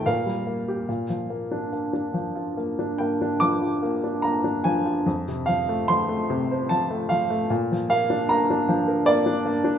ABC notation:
X:1
M:3/4
L:1/16
Q:1/4=73
K:Bbmix
V:1 name="Upright piano"
[Bf]8 z4 | z2 g2 d'4 b2 a2 | z2 f2 c'4 =a2 f2 | z2 f2 b4 d4 |]
V:2 name="Upright piano"
B,, G, B, G B,, F, B, D B, D F, F | B, D B, D F, F B, D B, D F, F | F,, C, F, =A, F, A, C, c F, A, F, A, | B,, F, B, D B, D F, B B, D B, D |]